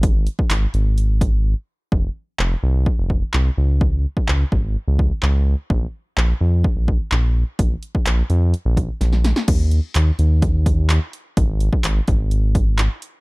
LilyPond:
<<
  \new Staff \with { instrumentName = "Analog synth bass" } { \clef bass \time 4/4 \key bes \dorian \tempo 4 = 127 aes,,4 aes,,8 aes,,2~ aes,,8 | f,,8 r8 f,,8 c,8. f,,8. c,8 des,8~ | des,4 des,8 aes,,8. des,8. des,4 | bes,,8 r8 bes,,8 f,8. bes,,8. bes,,4 |
bes,,8 r8 bes,,8 f,8. bes,,8. bes,,4 | ees,4 ees,8 ees,2~ ees,8 | aes,,4 aes,,8 aes,,2~ aes,,8 | }
  \new DrumStaff \with { instrumentName = "Drums" } \drummode { \time 4/4 <hh bd>8 hh16 bd16 <hc hh>8 hh8 hh8 <hh bd>8 r4 | bd4 hc4 bd8 bd8 hc4 | bd8. bd16 hc8 bd8 r8 bd8 hc4 | bd4 hc4 bd8 bd8 hc4 |
<hh bd>8 hh16 bd16 <hc hh>8 hh8 hh8 <hh bd>8 <hh sn>16 sn16 <hh sn>16 sn16 | <cymc hh bd>8 hh8 <hc hh>8 hh8 <hh bd>8 <hh bd>8 <hc hh>8 hh8 | <hh bd>8 hh16 bd16 <hc hh>8 <hh bd>8 hh8 <hh bd>8 <hc hh>8 hh8 | }
>>